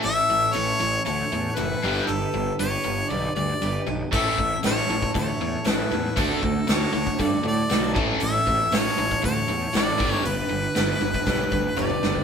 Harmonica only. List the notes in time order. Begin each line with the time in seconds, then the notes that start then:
0.05 E5
0.54 C#5
1.05 C#5
1.55 B4
2.06 A4
2.60 C#5
3.09 D5
3.35 D5
4.13 E5
4.66 C#5
5.18 C#5
5.68 B4
6.20 A4
6.71 C#5
7.21 D5
7.47 D5
8.23 E5
8.75 C#5
9.25 C#5
9.76 D5
10.10 C#5
10.27 B4
11.80 D5